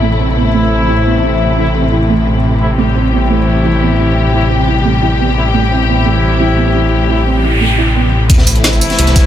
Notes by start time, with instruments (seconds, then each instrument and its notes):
Already playing: detuned saw bass A1, string section C3 E3 A3 E4
0.02 felt piano A3
0.19 brass ensemble A3 C4 E4, felt piano C4
0.37 felt piano B3
0.54 felt piano A3
0.88 felt piano E4
1.06 felt piano B3
1.23 felt piano E4
1.57 brass ensemble A3 C4 E4, felt piano E4
1.74 felt piano C4
1.92 felt piano E4
2.09 felt piano A3
2.26 felt piano C4
2.43 felt piano C4
2.61 brass ensemble A3 C4 E4
2.78 detuned saw bass A1, string section G3 G4, felt piano A3
2.95 brass ensemble A3 C4 E4, felt piano C4
3.12 felt piano B3
3.30 felt piano A3
3.64 felt piano E4
3.81 felt piano B3
3.99 felt piano E4
4.33 brass ensemble A3 C4 E4, felt piano E4
4.50 felt piano C4
4.68 felt piano E4
4.85 felt piano A3
5.02 felt piano E4
5.19 felt piano B3
5.37 brass ensemble A3 C4 E4
5.54 felt piano A3
5.71 brass ensemble A3 C4 E4, felt piano C4
5.88 felt piano B3
6.06 felt piano A3
6.40 felt piano E4
6.57 felt piano B3
6.75 felt piano E4
6.92 noise sweep
7.09 brass ensemble A3 C4 E4, felt piano E4
7.26 felt piano C4
7.43 felt piano E4
7.61 felt piano A3
7.78 felt piano E4
7.95 felt piano B3
8.30 detuned saw bass A1, string section C3 E3 A3 E4, kick, closed hi-hat, sub drop
8.38 snare
8.46 brass ensemble A3 C4 E4, closed hi-hat, tambourine
8.56 closed hi-hat
8.64 snare, closed hi-hat
8.73 tambourine
8.81 closed hi-hat, open hi-hat, tambourine
8.90 snare, closed hi-hat
8.98 detuned saw bass C2, closed hi-hat
9.07 snare, closed hi-hat, tambourine
9.16 kick, snare, closed hi-hat, tambourine